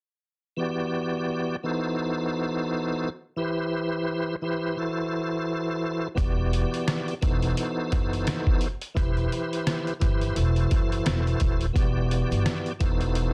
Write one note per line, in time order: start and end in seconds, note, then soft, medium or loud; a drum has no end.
0.57 1.56 E3 medium
0.57 1.56 B3 medium
0.57 1.56 F#4 medium
0.57 1.57 G4 medium
0.57 1.57 D5 medium
1.63 3.09 E3 medium
1.63 3.09 B3 medium
1.63 3.09 D#4 medium
1.63 3.10 F#4 medium
1.63 3.10 A4 medium
1.63 3.10 C5 loud
3.36 4.35 E3 medium
3.36 4.35 E4 medium
3.36 4.36 G4 medium
3.36 4.36 B4 medium
3.36 4.36 C5 loud
4.42 4.76 E3 medium
4.42 4.76 E4 medium
4.42 4.78 G4 medium
4.42 4.78 B4 medium
4.42 4.78 C5 loud
4.77 6.07 E3 medium
4.77 6.08 E4 medium
4.77 6.08 F#4 medium
4.77 6.09 A4 medium
4.77 6.09 C5 medium
6.15 6.62 E1 loud
6.15 7.14 E3 medium
6.15 7.14 B3 medium
6.15 7.14 F#4 medium
6.15 7.15 G4 medium
6.15 7.15 D5 medium
6.15 kick loud
6.15 closed hi-hat medium
6.53 closed hi-hat medium
6.74 closed hi-hat medium
6.88 cross-stick medium
6.88 snare loud
6.88 closed hi-hat medium
7.08 closed hi-hat soft
7.21 7.51 E1 loud
7.21 8.67 E3 medium
7.21 8.67 B3 medium
7.21 8.67 D#4 medium
7.21 8.68 F#4 medium
7.21 8.68 A4 medium
7.21 8.68 C5 loud
7.21 kick medium
7.21 closed hi-hat medium
7.42 closed hi-hat medium
7.57 closed hi-hat loud
7.92 8.21 F#1 medium
7.92 kick medium
7.92 closed hi-hat medium
8.13 closed hi-hat medium
8.27 cross-stick medium
8.27 snare loud
8.27 closed hi-hat loud
8.47 kick medium
8.61 closed hi-hat medium
8.81 closed hi-hat medium
8.94 9.25 E1 loud
8.94 9.93 E3 medium
8.94 9.93 E4 medium
8.94 9.94 G4 medium
8.94 9.94 B4 medium
8.94 9.94 C5 loud
8.94 kick loud
8.94 closed hi-hat medium
9.17 closed hi-hat soft
9.32 closed hi-hat medium
9.53 closed hi-hat medium
9.67 cross-stick medium
9.67 snare loud
9.67 closed hi-hat medium
9.87 closed hi-hat soft
10.00 10.30 G1 medium
10.00 10.34 E3 loud
10.00 10.34 E4 medium
10.00 10.36 G4 medium
10.00 10.36 B4 medium
10.00 10.36 C5 loud
10.00 kick medium
10.00 closed hi-hat medium
10.21 closed hi-hat medium
10.35 10.64 E1 loud
10.35 11.65 E3 medium
10.35 11.66 E4 medium
10.35 11.66 F#4 medium
10.35 11.67 A4 medium
10.35 11.67 C5 medium
10.35 closed hi-hat loud
10.56 closed hi-hat soft
10.71 11.00 F#1 medium
10.71 kick medium
10.71 closed hi-hat medium
10.92 closed hi-hat medium
11.06 11.34 E1 medium
11.06 cross-stick medium
11.06 snare loud
11.06 closed hi-hat loud
11.27 closed hi-hat soft
11.40 11.69 D#1 medium
11.40 kick medium
11.40 closed hi-hat medium
11.61 closed hi-hat medium
11.73 12.20 E1 medium
11.73 12.72 E3 medium
11.73 12.72 B3 medium
11.73 12.73 F#4 medium
11.73 12.73 G4 medium
11.73 12.73 D5 medium
11.73 kick loud
11.73 closed hi-hat medium
12.11 closed hi-hat medium
12.31 12.43 G1 medium
12.31 closed hi-hat medium
12.46 cross-stick medium
12.46 snare loud
12.46 closed hi-hat medium
12.66 closed hi-hat soft
12.79 13.33 E1 loud
12.79 13.33 E3 medium
12.79 13.33 B3 medium
12.79 13.33 D#4 medium
12.79 13.33 F#4 medium
12.79 13.33 A4 medium
12.79 13.33 C5 loud
12.79 kick medium
12.79 closed hi-hat medium
13.01 closed hi-hat medium
13.15 closed hi-hat loud